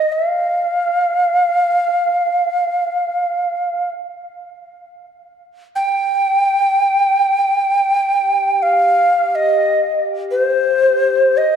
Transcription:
0, 0, Header, 1, 3, 480
1, 0, Start_track
1, 0, Tempo, 500000
1, 11098, End_track
2, 0, Start_track
2, 0, Title_t, "Native American-style wooden flute"
2, 0, Program_c, 0, 77
2, 0, Note_on_c, 0, 75, 68
2, 119, Note_on_c, 0, 77, 71
2, 134, Note_off_c, 0, 75, 0
2, 3747, Note_off_c, 0, 77, 0
2, 5526, Note_on_c, 0, 79, 95
2, 8280, Note_on_c, 0, 77, 81
2, 8294, Note_off_c, 0, 79, 0
2, 8978, Note_on_c, 0, 75, 75
2, 8993, Note_off_c, 0, 77, 0
2, 9641, Note_off_c, 0, 75, 0
2, 9899, Note_on_c, 0, 72, 77
2, 10919, Note_on_c, 0, 75, 67
2, 10934, Note_off_c, 0, 72, 0
2, 11098, Note_off_c, 0, 75, 0
2, 11098, End_track
3, 0, Start_track
3, 0, Title_t, "Glass harmonica"
3, 0, Program_c, 1, 92
3, 7845, Note_on_c, 1, 67, 57
3, 9898, Note_on_c, 1, 72, 49
3, 11098, Note_off_c, 1, 67, 0
3, 11098, Note_off_c, 1, 72, 0
3, 11098, End_track
0, 0, End_of_file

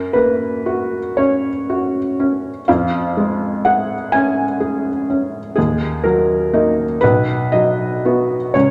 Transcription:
0, 0, Header, 1, 2, 480
1, 0, Start_track
1, 0, Key_signature, 6, "major"
1, 0, Tempo, 1023891
1, 788, Tempo, 969305
1, 2711, Time_signature, 12, 3, 24, 8
1, 3188, Tempo, 1010101
1, 4223, End_track
2, 0, Start_track
2, 0, Title_t, "Felt piano"
2, 0, Program_c, 0, 0
2, 0, Control_c, 0, 64, 127
2, 0, Note_on_c, 0, 42, 37
2, 0, Note_on_c, 0, 70, 45
2, 62, Note_on_c, 0, 71, 54
2, 63, Note_off_c, 0, 70, 0
2, 71, Note_on_c, 0, 58, 34
2, 309, Note_on_c, 0, 66, 33
2, 457, Note_off_c, 0, 58, 0
2, 548, Note_on_c, 0, 73, 56
2, 549, Note_off_c, 0, 71, 0
2, 553, Note_on_c, 0, 61, 34
2, 693, Note_off_c, 0, 66, 0
2, 796, Note_on_c, 0, 66, 33
2, 937, Note_off_c, 0, 61, 0
2, 1043, Note_on_c, 0, 61, 34
2, 1184, Note_off_c, 0, 66, 0
2, 1245, Note_off_c, 0, 42, 0
2, 1275, Note_off_c, 0, 73, 0
2, 1282, Note_off_c, 0, 61, 0
2, 1283, Note_on_c, 0, 77, 59
2, 1286, Control_c, 0, 64, 0
2, 1287, Note_on_c, 0, 41, 47
2, 1369, Control_c, 0, 64, 127
2, 1526, Note_on_c, 0, 56, 38
2, 1762, Note_on_c, 0, 78, 62
2, 1763, Note_off_c, 0, 77, 0
2, 1767, Note_on_c, 0, 68, 39
2, 1909, Note_off_c, 0, 56, 0
2, 1997, Note_on_c, 0, 80, 68
2, 2002, Note_off_c, 0, 78, 0
2, 2006, Note_on_c, 0, 61, 41
2, 2146, Note_off_c, 0, 68, 0
2, 2236, Note_on_c, 0, 68, 39
2, 2381, Note_off_c, 0, 61, 0
2, 2480, Note_on_c, 0, 61, 34
2, 2615, Note_off_c, 0, 68, 0
2, 2696, Note_off_c, 0, 41, 0
2, 2707, Note_on_c, 0, 68, 55
2, 2709, Note_off_c, 0, 80, 0
2, 2715, Note_off_c, 0, 61, 0
2, 2719, Note_on_c, 0, 39, 42
2, 2721, Control_c, 0, 64, 0
2, 2808, Control_c, 0, 64, 127
2, 2945, Note_on_c, 0, 70, 47
2, 2947, Note_off_c, 0, 68, 0
2, 2952, Note_on_c, 0, 54, 43
2, 3191, Note_on_c, 0, 58, 34
2, 3192, Note_on_c, 0, 63, 41
2, 3328, Note_off_c, 0, 54, 0
2, 3403, Note_off_c, 0, 58, 0
2, 3404, Note_off_c, 0, 63, 0
2, 3406, Note_off_c, 0, 39, 0
2, 3416, Note_on_c, 0, 71, 65
2, 3418, Note_off_c, 0, 70, 0
2, 3428, Control_c, 0, 64, 0
2, 3428, Note_on_c, 0, 35, 44
2, 3517, Control_c, 0, 64, 127
2, 3657, Note_off_c, 0, 71, 0
2, 3660, Note_on_c, 0, 75, 60
2, 3667, Note_on_c, 0, 54, 35
2, 3912, Note_on_c, 0, 59, 34
2, 3915, Note_on_c, 0, 66, 37
2, 4052, Note_off_c, 0, 54, 0
2, 4131, Note_off_c, 0, 35, 0
2, 4133, Note_off_c, 0, 59, 0
2, 4134, Note_off_c, 0, 66, 0
2, 4144, Note_on_c, 0, 73, 56
2, 4146, Note_off_c, 0, 75, 0
2, 4151, Note_on_c, 0, 37, 43
2, 4153, Control_c, 0, 64, 0
2, 4223, Note_off_c, 0, 37, 0
2, 4223, Note_off_c, 0, 73, 0
2, 4223, End_track
0, 0, End_of_file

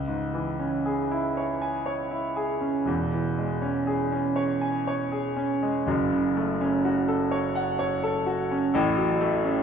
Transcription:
0, 0, Header, 1, 2, 480
1, 0, Start_track
1, 0, Key_signature, 4, "minor"
1, 0, Tempo, 1013514
1, 1356, Time_signature, 3, 2, 24, 8
1, 1837, Tempo, 993377
1, 3277, Tempo, 938967
1, 4693, End_track
2, 0, Start_track
2, 0, Title_t, "Grand piano"
2, 0, Program_c, 0, 0
2, 0, Note_on_c, 0, 37, 59
2, 11, Control_c, 0, 64, 127
2, 38, Note_on_c, 0, 44, 44
2, 158, Note_on_c, 0, 52, 48
2, 233, Note_off_c, 0, 44, 0
2, 280, Note_on_c, 0, 61, 46
2, 355, Note_off_c, 0, 52, 0
2, 405, Note_on_c, 0, 68, 53
2, 478, Note_off_c, 0, 61, 0
2, 527, Note_on_c, 0, 64, 55
2, 600, Note_off_c, 0, 68, 0
2, 649, Note_on_c, 0, 73, 50
2, 718, Note_off_c, 0, 64, 0
2, 765, Note_on_c, 0, 80, 54
2, 835, Note_off_c, 0, 73, 0
2, 880, Note_on_c, 0, 73, 55
2, 950, Note_off_c, 0, 80, 0
2, 999, Note_on_c, 0, 64, 48
2, 1066, Note_off_c, 0, 73, 0
2, 1118, Note_on_c, 0, 68, 54
2, 1187, Note_off_c, 0, 64, 0
2, 1234, Note_on_c, 0, 61, 50
2, 1309, Note_off_c, 0, 68, 0
2, 1335, Note_off_c, 0, 37, 0
2, 1352, Note_on_c, 0, 28, 64
2, 1356, Note_off_c, 0, 61, 0
2, 1359, Note_on_c, 0, 40, 65
2, 1366, Control_c, 0, 64, 0
2, 1454, Control_c, 0, 64, 127
2, 1482, Note_on_c, 0, 52, 46
2, 1601, Note_on_c, 0, 56, 51
2, 1674, Note_off_c, 0, 52, 0
2, 1713, Note_on_c, 0, 61, 54
2, 1791, Note_off_c, 0, 56, 0
2, 1833, Note_on_c, 0, 68, 57
2, 1906, Note_off_c, 0, 61, 0
2, 1954, Note_on_c, 0, 61, 54
2, 2026, Note_off_c, 0, 68, 0
2, 2069, Note_on_c, 0, 73, 58
2, 2147, Note_off_c, 0, 61, 0
2, 2192, Note_on_c, 0, 80, 58
2, 2265, Note_off_c, 0, 73, 0
2, 2318, Note_on_c, 0, 73, 65
2, 2388, Note_off_c, 0, 80, 0
2, 2436, Note_on_c, 0, 68, 52
2, 2511, Note_off_c, 0, 73, 0
2, 2555, Note_on_c, 0, 61, 57
2, 2631, Note_off_c, 0, 68, 0
2, 2680, Note_on_c, 0, 56, 60
2, 2750, Note_off_c, 0, 61, 0
2, 2780, Note_off_c, 0, 28, 0
2, 2783, Note_off_c, 0, 40, 0
2, 2797, Note_on_c, 0, 30, 69
2, 2801, Note_off_c, 0, 56, 0
2, 2803, Note_on_c, 0, 42, 73
2, 2811, Control_c, 0, 64, 0
2, 2899, Control_c, 0, 64, 127
2, 2921, Note_on_c, 0, 49, 55
2, 3039, Note_on_c, 0, 57, 60
2, 3113, Note_off_c, 0, 49, 0
2, 3156, Note_on_c, 0, 61, 61
2, 3230, Note_off_c, 0, 57, 0
2, 3272, Note_on_c, 0, 66, 68
2, 3347, Note_off_c, 0, 61, 0
2, 3391, Note_on_c, 0, 69, 61
2, 3468, Note_off_c, 0, 66, 0
2, 3510, Note_on_c, 0, 73, 66
2, 3587, Note_off_c, 0, 69, 0
2, 3632, Note_on_c, 0, 78, 65
2, 3707, Note_off_c, 0, 73, 0
2, 3753, Note_on_c, 0, 73, 70
2, 3829, Note_off_c, 0, 78, 0
2, 3878, Note_on_c, 0, 69, 67
2, 3950, Note_off_c, 0, 73, 0
2, 3995, Note_on_c, 0, 66, 62
2, 4073, Note_off_c, 0, 69, 0
2, 4123, Note_on_c, 0, 61, 62
2, 4191, Note_off_c, 0, 66, 0
2, 4219, Note_off_c, 0, 30, 0
2, 4222, Note_off_c, 0, 42, 0
2, 4237, Note_on_c, 0, 33, 78
2, 4242, Note_off_c, 0, 61, 0
2, 4243, Note_on_c, 0, 45, 88
2, 4249, Control_c, 0, 64, 0
2, 4340, Control_c, 0, 64, 127
2, 4358, Note_on_c, 0, 54, 63
2, 4478, Note_on_c, 0, 57, 70
2, 4549, Note_off_c, 0, 54, 0
2, 4597, Note_on_c, 0, 61, 65
2, 4668, Note_off_c, 0, 57, 0
2, 4693, Note_off_c, 0, 33, 0
2, 4693, Note_off_c, 0, 45, 0
2, 4693, Note_off_c, 0, 61, 0
2, 4693, End_track
0, 0, End_of_file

